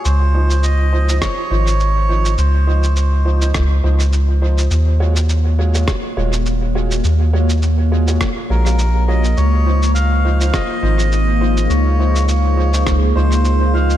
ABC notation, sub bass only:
X:1
M:4/4
L:1/8
Q:"Swing 16ths" 1/4=103
K:Db
V:1 name="Sub bass" clef=bass
D,,4 z A,,,3 | D,,4 D,, D,,3 | E,,4 z E,,,3 | E,,4 z B,,,3 |
D,,4 z A,,,3 | D,,4 D,, D,,3 |]